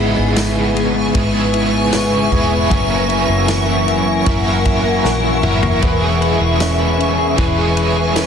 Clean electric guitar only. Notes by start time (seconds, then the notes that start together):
Already playing: G#2 B3 E4 G#4
0.16 B3
0.36 G#3
0.55 E4
0.75 G#3
0.95 B3
1.15 G#2 E4
1.34 B3
1.53 E4
1.73 B3
1.92 G#3
2.11 E4
2.31 G#3
2.50 B3
2.69 F#2 E4
2.89 A#3
3.09 E4
3.28 A#3
3.48 E3
3.66 E4
3.87 E3
4.06 A#3
4.25 F#2 E4
4.44 A#3
4.65 E4
4.84 A#3
5.04 E3
5.23 E4
5.43 E3
5.63 A#3
5.82 E3 B4
6.02 G#4
6.21 B4
6.40 G#4
6.60 C#4
6.80 B4
6.98 C#4
7.18 G#4
7.38 E3 B4
7.58 G#4
7.77 B4
7.96 G#4
8.16 C#4